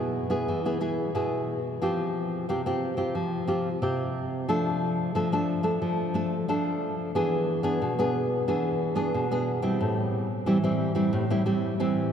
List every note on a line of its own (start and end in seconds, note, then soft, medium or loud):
0.00 0.45 B2 medium
0.00 0.26 B3 medium
0.00 0.26 E4 medium
0.00 0.27 G#4 medium
0.30 0.59 B3 medium
0.30 0.59 E4 medium
0.30 0.59 G#4 medium
0.48 1.12 E3 medium
0.65 0.77 B3 medium
0.65 0.77 E4 medium
0.65 0.77 G#4 medium
0.81 1.09 B3 medium
0.81 1.09 E4 medium
0.81 1.10 G#4 medium
1.15 1.78 B2 medium
1.15 1.58 B3 medium
1.15 1.58 E4 medium
1.15 1.58 G#4 medium
1.82 2.45 F3 medium
1.82 2.43 C4 medium
1.82 2.44 F4 medium
1.82 2.44 G4 medium
2.49 3.12 C3 medium
2.49 2.60 C4 medium
2.49 2.60 F4 medium
2.49 2.61 G4 medium
2.66 2.94 C4 medium
2.66 2.94 F4 medium
2.66 2.94 G4 medium
2.97 3.43 C4 medium
2.97 3.43 F4 medium
2.97 3.43 G4 medium
3.15 3.79 F3 medium
3.47 3.68 C4 medium
3.47 3.68 F4 medium
3.47 3.68 G4 medium
3.82 4.45 C3 medium
3.82 4.43 C4 medium
3.82 4.44 F4 medium
3.82 4.44 G4 medium
4.48 5.12 F3 medium
4.48 5.10 A3 medium
4.48 5.10 D4 medium
4.48 5.10 A4 medium
5.15 5.78 F3 medium
5.15 5.27 A3 medium
5.15 5.27 D4 medium
5.15 5.27 A4 medium
5.32 5.60 A3 medium
5.32 5.60 D4 medium
5.32 5.61 A4 medium
5.63 6.09 A3 medium
5.63 6.09 D4 medium
5.63 6.09 A4 medium
5.82 6.45 F3 medium
6.14 6.34 A3 medium
6.14 6.35 D4 medium
6.14 6.35 A4 medium
6.48 7.12 F3 medium
6.48 7.10 A3 medium
6.48 7.10 D4 medium
6.48 7.10 A4 medium
7.15 7.78 E3 medium
7.15 7.60 B3 medium
7.15 7.60 D4 medium
7.15 7.60 G#4 medium
7.63 7.92 B3 medium
7.63 7.92 D4 medium
7.63 7.92 G#4 medium
7.82 8.45 B2 medium
7.99 8.43 B3 medium
7.99 8.43 D4 medium
7.99 8.43 G#4 medium
8.48 9.11 E3 medium
8.48 8.92 B3 medium
8.48 8.93 D4 medium
8.48 8.93 G#4 medium
8.95 9.24 B3 medium
8.95 9.25 D4 medium
8.95 9.25 G#4 medium
9.14 9.77 B2 medium
9.31 9.59 B3 medium
9.31 9.59 D4 medium
9.31 9.59 G#4 medium
9.62 10.24 G3 medium
9.62 10.24 C4 medium
9.62 10.25 E4 medium
9.81 10.44 A2 medium
10.46 11.10 E3 medium
10.46 10.57 G3 medium
10.46 10.57 C4 medium
10.46 10.57 E4 medium
10.64 10.91 G3 medium
10.64 10.92 C4 medium
10.64 10.92 E4 medium
10.95 11.24 G3 medium
10.95 11.24 C4 medium
10.95 11.24 E4 medium
11.13 11.76 A2 medium
11.30 11.41 G3 medium
11.30 11.42 C4 medium
11.30 11.42 E4 medium
11.46 11.74 G3 medium
11.46 11.74 C4 medium
11.46 11.74 E4 medium
11.80 12.12 E3 medium
11.80 12.12 G3 medium
11.80 12.12 C4 medium
11.80 12.12 E4 medium